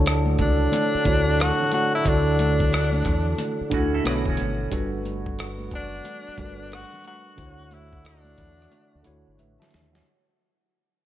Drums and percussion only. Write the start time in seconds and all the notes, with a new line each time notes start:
0.05 cross-stick, closed hi-hat, muted conga
0.26 high conga
0.38 kick, closed hi-hat, low conga
0.72 closed hi-hat, muted conga, high conga, low conga
1.05 kick, closed hi-hat, high conga
1.40 cross-stick, closed hi-hat, high conga
1.60 muted conga, low conga
1.72 closed hi-hat, high conga
2.05 kick, closed hi-hat
2.39 closed hi-hat, high conga
2.60 kick
2.72 cross-stick, closed hi-hat, muted conga
2.92 muted conga, high conga
3.05 kick, closed hi-hat, low conga
3.38 closed hi-hat, high conga, low conga
3.59 muted conga
3.71 kick, closed hi-hat, high conga
4.05 cross-stick, closed hi-hat, muted conga, high conga
4.25 kick, low conga
4.37 closed hi-hat, high conga
4.71 kick, closed hi-hat, muted conga
4.92 muted conga
5.03 closed hi-hat, high conga
5.26 kick
5.39 cross-stick, closed hi-hat
5.58 high conga
5.71 kick, closed hi-hat, low conga
6.04 closed hi-hat, high conga, low conga
6.37 kick, closed hi-hat, high conga
6.72 cross-stick, closed hi-hat, muted conga, high conga
6.93 muted conga, low conga
7.04 closed hi-hat, high conga
7.38 kick, closed hi-hat
7.59 muted conga
7.71 closed hi-hat, high conga
7.93 kick
8.04 cross-stick, closed hi-hat, muted conga
8.24 muted conga, high conga
8.38 kick, closed hi-hat, low conga
8.62 cross-stick
8.71 closed hi-hat, muted conga, high conga, low conga
8.93 muted conga
9.04 closed hi-hat, high conga
9.38 closed hi-hat, muted conga, high conga
9.58 snare, low conga
9.70 snare, closed hi-hat, high conga
9.95 snare